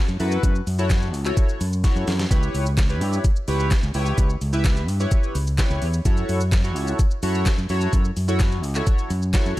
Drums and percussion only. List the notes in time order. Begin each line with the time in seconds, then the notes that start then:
0.08 shaker
0.20 open hi-hat, shaker
0.32 shaker
0.43 kick, closed hi-hat, shaker
0.55 shaker
0.67 open hi-hat, shaker
0.79 shaker
0.90 kick, snare, clap, closed hi-hat, shaker
1.02 shaker
1.14 open hi-hat, shaker
1.25 clap, shaker
1.37 kick, closed hi-hat, shaker
1.49 shaker
1.61 open hi-hat, shaker
1.73 shaker
1.84 kick, snare, closed hi-hat, shaker
1.96 shaker
2.08 snare, open hi-hat, shaker
2.19 snare, shaker
2.31 kick, closed hi-hat, shaker
2.43 shaker
2.55 open hi-hat, shaker
2.66 shaker
2.78 kick, snare, clap, closed hi-hat, shaker
2.89 shaker
3.01 open hi-hat, shaker
3.13 shaker
3.24 kick, closed hi-hat, shaker
3.36 shaker
3.48 open hi-hat, shaker
3.60 shaker
3.71 kick, snare, clap, closed hi-hat, shaker
3.83 shaker
3.94 open hi-hat, shaker
4.06 shaker
4.18 kick, closed hi-hat, shaker
4.30 shaker
4.41 open hi-hat, shaker
4.53 shaker
4.65 kick, snare, clap, closed hi-hat, shaker
4.77 shaker
4.88 open hi-hat, shaker
5.00 shaker
5.11 kick, closed hi-hat, shaker
5.23 shaker
5.35 open hi-hat, shaker
5.47 shaker
5.58 kick, snare, clap, closed hi-hat, shaker
5.70 shaker
5.82 open hi-hat, shaker
5.93 shaker
6.05 kick, closed hi-hat, shaker
6.17 shaker
6.29 open hi-hat, shaker
6.41 shaker
6.52 kick, snare, clap, closed hi-hat, shaker
6.64 shaker
6.76 open hi-hat, shaker
6.88 shaker
6.99 kick, closed hi-hat, shaker
7.11 shaker
7.23 open hi-hat, shaker
7.35 shaker
7.46 kick, snare, clap, closed hi-hat, shaker
7.58 shaker
7.69 open hi-hat, shaker
7.81 shaker
7.93 kick, closed hi-hat, shaker
8.05 shaker
8.17 open hi-hat, shaker
8.28 shaker
8.40 kick, snare, clap, closed hi-hat, shaker
8.52 shaker
8.63 open hi-hat, shaker
8.75 clap, shaker
8.87 kick, closed hi-hat, shaker
8.98 shaker
9.10 open hi-hat, shaker
9.22 shaker
9.34 kick, snare, clap, closed hi-hat, shaker
9.46 shaker